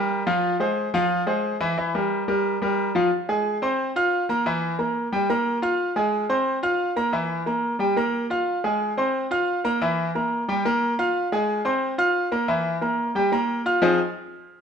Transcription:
0.00 0.21 G3 medium
0.00 0.21 G4 medium
0.00 0.21 A#4 medium
0.27 0.54 F3 medium
0.27 0.54 F4 medium
0.27 0.54 F5 medium
0.60 0.87 G#3 medium
0.60 0.88 G#4 medium
0.60 0.88 C5 medium
0.94 1.21 F3 medium
0.94 1.21 F4 medium
0.94 1.22 F5 medium
1.26 1.54 G#3 medium
1.26 1.55 G#4 medium
1.26 1.55 C5 medium
1.60 1.74 E3 medium
1.60 1.75 E4 medium
1.60 1.75 E5 medium
1.78 1.91 E3 medium
1.78 1.92 E4 medium
1.78 1.92 E5 medium
1.95 2.22 G3 medium
1.95 2.22 G4 medium
1.95 2.22 A#4 medium
2.28 2.55 G3 medium
2.28 2.55 G4 medium
2.28 2.56 A#4 medium
2.62 2.89 G3 medium
2.62 2.89 G4 medium
2.62 2.89 A#4 medium
2.95 3.09 F3 medium
2.95 3.09 F4 medium
2.95 3.09 F5 medium
3.29 3.56 G#3 medium
3.29 3.56 G#4 medium
3.29 3.56 G#5 medium
3.62 3.89 C4 medium
3.62 3.90 C5 medium
3.62 3.90 C6 medium
3.96 4.23 F4 medium
3.96 4.23 F5 medium
3.96 4.23 F6 medium
4.29 4.43 A#3 medium
4.29 4.43 A#4 medium
4.29 4.43 A#5 medium
4.46 4.73 E3 loud
4.46 4.73 E4 medium
4.46 4.74 E5 medium
4.79 5.06 A#3 medium
4.79 5.06 A#4 medium
4.79 5.07 A#5 medium
5.12 5.26 G3 medium
5.12 5.26 G4 medium
5.12 5.26 G5 medium
5.30 5.57 A#3 medium
5.30 5.57 A#4 medium
5.30 5.57 A#5 medium
5.62 5.90 F4 medium
5.62 5.90 F5 medium
5.62 5.90 F6 medium
5.96 6.23 G#3 medium
5.96 6.24 G#4 medium
5.96 6.24 G#5 medium
6.29 6.57 C4 medium
6.29 6.57 C5 medium
6.29 6.57 C6 medium
6.63 6.90 F4 medium
6.63 6.91 F5 medium
6.63 6.91 F6 medium
6.96 7.10 A#3 medium
6.96 7.10 A#4 medium
6.96 7.10 A#5 medium
7.13 7.40 E3 medium
7.13 7.41 E4 medium
7.13 7.41 E5 medium
7.46 7.74 A#3 medium
7.46 7.74 A#4 medium
7.46 7.74 A#5 medium
7.79 7.93 G3 medium
7.79 7.94 G4 medium
7.79 7.94 G5 medium
7.97 8.24 A#3 medium
7.97 8.25 A#4 medium
7.97 8.25 A#5 medium
8.30 8.58 F4 medium
8.30 8.58 F5 medium
8.30 8.58 F6 medium
8.64 8.91 G#3 medium
8.64 8.91 G#4 medium
8.64 8.92 G#5 medium
8.97 9.25 C4 medium
8.97 9.25 C5 medium
8.97 9.25 C6 medium
9.31 9.58 F4 medium
9.31 9.59 F5 medium
9.31 9.59 F6 medium
9.64 9.78 A#3 medium
9.64 9.78 A#4 medium
9.64 9.78 A#5 medium
9.81 10.09 E3 medium
9.81 10.09 E4 loud
9.81 10.09 E5 medium
10.15 10.42 A#3 medium
10.15 10.42 A#4 medium
10.15 10.43 A#5 medium
10.48 10.62 G3 medium
10.48 10.62 G4 medium
10.48 10.62 G5 medium
10.65 10.93 A#3 medium
10.65 10.93 A#4 medium
10.65 10.93 A#5 medium
10.99 11.26 F4 medium
10.99 11.26 F5 medium
10.99 11.26 F6 medium
11.32 11.59 G#3 medium
11.32 11.60 G#4 medium
11.32 11.60 G#5 medium
11.65 11.92 C4 medium
11.65 11.93 C5 medium
11.65 11.93 C6 medium
11.98 12.26 F4 medium
11.98 12.26 F5 medium
11.98 12.26 F6 medium
12.32 12.46 A#3 medium
12.32 12.46 A#4 medium
12.32 12.46 A#5 medium
12.48 12.76 E3 medium
12.48 12.76 E4 medium
12.48 12.76 E5 medium
12.81 13.09 A#3 medium
12.81 13.10 A#4 medium
12.81 13.10 A#5 medium
13.15 13.29 G3 medium
13.15 13.29 G4 medium
13.15 13.29 G5 medium
13.32 13.60 A#3 medium
13.32 13.60 A#4 medium
13.32 13.60 A#5 medium
13.66 13.80 F4 medium
13.66 13.80 F5 medium
13.66 13.80 F6 medium
13.82 13.98 F3 loud
13.82 13.98 C4 medium
13.82 13.98 D#4 medium
13.82 13.98 F4 medium
13.82 13.98 G#4 medium
13.82 13.98 C5 loud

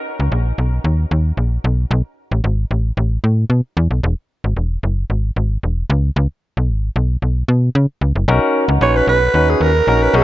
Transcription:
0.20 0.29 C#2 medium
0.32 0.53 A#1 medium
0.58 0.80 B1 medium
0.84 1.06 D#2 medium
1.11 1.33 D#2 medium
1.37 1.59 A#1 medium
1.64 1.86 B1 loud
1.91 2.02 B1 loud
2.31 2.42 A1 medium
2.44 2.65 G#1 loud
2.71 2.92 A1 medium
2.97 3.18 A1 medium
3.24 3.45 A2 medium
3.50 3.61 B2 medium
3.77 3.88 E2 loud
3.91 4.01 B1 medium
4.03 4.15 E1 loud
4.44 4.54 G#1 medium
4.57 4.78 E1 medium
4.83 5.04 F#1 medium
5.10 5.31 G#1 medium
5.36 5.58 G#1 medium
5.63 5.84 E1 medium
5.90 6.11 C#2 loud
6.16 6.27 C#2 loud
6.57 6.70 B1 medium
6.69 6.90 G#1 medium
6.96 7.17 B1 medium
7.22 7.43 B1 medium
7.48 7.70 B2 medium
7.75 7.86 C#3 medium
8.01 8.13 C#2 medium
8.16 8.26 F#1 medium
8.28 8.39 B1 loud
8.28 8.64 C#4 medium
8.28 8.64 D#4 medium
8.28 8.64 F#4 medium
8.28 8.64 A#4 loud
8.68 8.79 C#2 loud
8.81 9.02 A#1 loud
8.81 9.17 C#4 medium
8.81 9.17 D#4 medium
8.81 9.17 F#4 medium
8.81 9.18 B4 medium
8.81 8.98 C#5 loud
8.96 9.08 B4 loud
9.07 9.29 B1 loud
9.07 9.51 B4 loud
9.34 9.55 D#2 medium
9.34 9.70 C#4 medium
9.34 9.70 D#4 medium
9.34 9.71 F#4 medium
9.34 9.71 B4 medium
9.50 9.64 G#4 medium
9.61 9.82 D#2 medium
9.61 10.04 A#4 loud
9.87 10.09 A#1 medium
9.87 10.13 C#4 medium
9.87 10.13 D#4 medium
9.87 10.14 F#4 medium
9.87 10.14 A#4 medium
10.03 10.17 B4 loud
10.14 10.24 B1 loud
10.14 10.24 C#4 medium
10.14 10.24 D#4 medium
10.14 10.24 F#4 medium
10.14 10.21 G#4 medium
10.14 10.24 G#4 loud

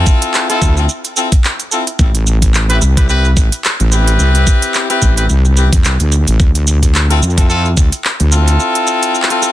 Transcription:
0.00 0.46 C4 loud
0.00 0.46 E4 medium
0.00 0.46 F4 medium
0.00 0.46 A4 loud
0.06 kick loud
0.06 shaker medium
0.22 closed hi-hat medium
0.22 shaker soft
0.34 clap loud
0.34 shaker soft
0.50 0.73 C4 loud
0.50 0.73 E4 medium
0.50 0.73 F4 medium
0.50 0.73 A4 loud
0.50 cross-stick soft
0.50 closed hi-hat medium
0.50 shaker soft
0.62 0.87 D2 medium
0.62 kick medium
0.62 shaker medium
0.77 0.87 C4 medium
0.77 0.87 E4 medium
0.77 0.87 F4 medium
0.77 0.87 A4 medium
0.77 shaker soft
0.89 shaker soft
1.05 closed hi-hat soft
1.05 shaker soft
1.17 1.29 C4 medium
1.17 1.29 E4 medium
1.17 1.29 F4 medium
1.17 1.29 A4 medium
1.17 shaker medium
1.32 kick loud
1.32 closed hi-hat medium
1.32 shaker soft
1.44 clap loud
1.44 shaker soft
1.60 closed hi-hat soft
1.60 shaker soft
1.72 1.84 C4 medium
1.72 1.84 E4 medium
1.72 1.84 F4 medium
1.72 1.84 A4 medium
1.72 shaker medium
1.87 closed hi-hat medium
1.87 shaker soft
1.99 2.80 A1 loud
1.99 kick loud
1.99 shaker soft
2.15 closed hi-hat medium
2.15 shaker soft
2.27 shaker medium
2.42 kick medium
2.42 closed hi-hat medium
2.42 shaker soft
2.54 clap loud
2.54 shaker soft
2.70 2.80 C4 loud
2.70 2.80 E4 medium
2.70 2.80 G4 medium
2.70 2.80 B4 loud
2.70 cross-stick soft
2.70 closed hi-hat soft
2.70 shaker soft
2.82 3.35 C2 loud
2.82 cross-stick medium
2.82 shaker medium
2.97 3.08 C4 medium
2.97 3.08 E4 medium
2.97 3.08 G4 medium
2.97 3.08 B4 medium
2.97 kick loud
2.97 closed hi-hat medium
2.97 shaker soft
3.09 3.29 C4 medium
3.09 3.29 E4 medium
3.09 3.29 G4 medium
3.09 3.29 B4 loud
3.09 shaker soft
3.25 shaker soft
3.37 3.50 A1 loud
3.37 kick loud
3.37 shaker medium
3.52 closed hi-hat medium
3.52 shaker soft
3.64 clap loud
3.64 shaker soft
3.80 4.17 A1 medium
3.80 closed hi-hat soft
3.80 shaker soft
3.92 4.86 C4 loud
3.92 4.86 E4 medium
3.92 4.86 G4 medium
3.92 4.86 B4 loud
3.92 shaker medium
4.07 closed hi-hat medium
4.07 shaker soft
4.19 4.45 C2 loud
4.19 shaker soft
4.35 closed hi-hat medium
4.35 shaker soft
4.47 kick loud
4.47 shaker medium
4.62 closed hi-hat medium
4.62 shaker soft
4.74 clap loud
4.74 shaker soft
4.90 5.14 C4 loud
4.90 5.14 E4 loud
4.90 5.14 G4 medium
4.90 5.14 B4 loud
4.90 cross-stick soft
4.90 closed hi-hat soft
4.90 shaker soft
5.02 5.28 A1 medium
5.02 kick medium
5.02 shaker medium
5.17 5.27 C4 medium
5.17 5.27 E4 medium
5.17 5.27 G4 medium
5.17 5.27 B4 medium
5.17 closed hi-hat medium
5.17 shaker soft
5.29 5.70 C2 loud
5.29 shaker soft
5.45 shaker soft
5.57 5.70 C4 medium
5.57 5.70 E4 medium
5.57 5.70 G4 medium
5.57 5.70 B4 medium
5.57 shaker medium
5.73 5.83 E2 loud
5.73 kick loud
5.73 closed hi-hat medium
5.73 shaker soft
5.84 5.98 C2 loud
5.84 clap loud
5.84 shaker soft
6.00 6.25 D2 loud
6.00 closed hi-hat soft
6.00 shaker soft
6.12 shaker medium
6.27 6.38 A1 loud
6.27 closed hi-hat medium
6.27 shaker soft
6.40 7.20 D2 medium
6.40 kick loud
6.40 shaker soft
6.55 closed hi-hat medium
6.55 shaker soft
6.67 shaker medium
6.83 kick medium
6.83 closed hi-hat medium
6.83 shaker soft
6.95 clap loud
6.95 shaker soft
7.10 7.20 C4 loud
7.10 7.20 E4 medium
7.10 7.20 F4 medium
7.10 7.20 A4 loud
7.10 cross-stick medium
7.10 closed hi-hat soft
7.10 shaker soft
7.16 shaker soft
7.22 7.75 F2 loud
7.22 shaker medium
7.30 shaker soft
7.38 7.48 C4 medium
7.38 7.48 E4 medium
7.38 7.48 F4 medium
7.38 7.48 A4 medium
7.38 kick loud
7.38 closed hi-hat medium
7.38 shaker soft
7.50 7.69 C4 loud
7.50 7.69 E4 loud
7.50 7.69 F4 medium
7.50 7.69 A4 loud
7.50 shaker soft
7.65 shaker soft
7.77 7.90 D2 medium
7.77 kick loud
7.77 shaker medium
7.92 closed hi-hat medium
7.92 shaker soft
8.04 clap loud
8.20 8.58 D2 loud
8.20 closed hi-hat soft
8.20 shaker soft
8.32 9.27 C4 medium
8.32 9.27 E4 medium
8.32 9.27 F4 medium
8.32 9.27 A4 loud
8.32 shaker medium
8.48 closed hi-hat medium
8.48 shaker soft
8.60 shaker soft
8.75 closed hi-hat medium
8.75 shaker soft
8.87 shaker medium
9.03 closed hi-hat medium
9.03 shaker soft
9.15 shaker soft
9.22 clap loud
9.30 9.52 C4 loud
9.30 9.52 E4 medium
9.30 9.52 F4 medium
9.30 9.52 A4 loud
9.30 cross-stick medium
9.30 closed hi-hat medium
9.30 shaker soft
9.42 cross-stick medium
9.42 shaker medium

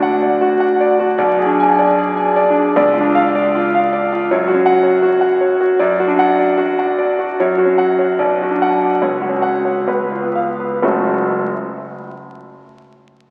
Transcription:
0.00 1.16 D2 medium
0.00 0.31 D4 soft
0.00 0.14 F#4 soft
0.00 0.22 D5 medium
0.00 0.33 F#5 medium
0.22 0.53 D5 medium
0.41 0.72 F#4 medium
0.60 0.92 F#5 medium
0.80 1.12 D5 medium
0.99 1.19 F#4 medium
1.18 2.73 B1 medium
1.18 1.50 D5 medium
1.39 1.70 G#4 medium
1.46 1.87 D4 soft
1.60 1.91 G#5 medium
1.79 2.10 D5 medium
1.98 2.30 G#4 medium
2.17 2.49 G#5 medium
2.36 2.69 D5 medium
2.50 2.77 D4 medium
2.58 2.77 G#4 medium
2.76 4.26 C#2 medium
2.76 3.08 D5 medium
2.94 3.26 F4 medium
3.00 3.43 D4 medium
3.15 3.47 F5 medium
3.35 3.67 D5 medium
3.55 3.86 F4 medium
3.75 4.05 F5 medium
3.93 4.23 D5 medium
4.13 4.31 F4 medium
4.31 5.76 F#2 medium
4.31 4.60 C#5 medium
4.48 4.77 F#4 medium
4.54 4.93 C#4 medium
4.66 4.95 F#5 medium
4.83 5.14 C#5 medium
5.02 5.33 F#4 medium
5.21 5.52 F#5 medium
5.41 5.72 C#5 soft
5.61 5.80 F#4 soft
5.79 7.34 F#2 medium
5.79 6.11 D5 medium
6.00 6.31 F#4 medium
6.07 6.49 D4 medium
6.19 6.51 F#5 medium
6.39 6.71 D5 soft
6.58 6.90 F#4 medium
6.79 7.10 F#5 medium
6.99 7.30 D5 soft
7.19 7.38 F#4 soft
7.40 8.18 F#2 medium
7.40 7.71 C#5 soft
7.58 7.90 F#4 soft
7.65 8.08 C#4 soft
7.78 8.11 F#5 medium
7.99 8.20 C#5 soft
8.19 8.98 B1 medium
8.19 8.52 D5 soft
8.42 8.74 F#4 soft
8.51 8.92 D4 soft
8.62 8.94 F#5 medium
8.83 9.02 D5 soft
9.02 9.85 C#2 soft
9.02 9.35 C#5 soft
9.22 9.56 F#4 soft
9.29 9.75 C#4 soft
9.42 9.78 F#5 medium
9.65 9.87 C#5 soft
9.88 10.80 C#2 soft
9.88 10.26 B4 soft
10.12 10.51 F4 soft
10.20 10.71 B3 soft
10.35 10.74 F5 soft
10.60 10.82 B4 soft
10.82 11.32 F#1 medium
10.82 11.32 C#2 soft
10.82 11.32 F#3 soft
10.82 11.32 A3 soft
10.82 11.33 C#4 soft
10.82 11.32 F#4 soft

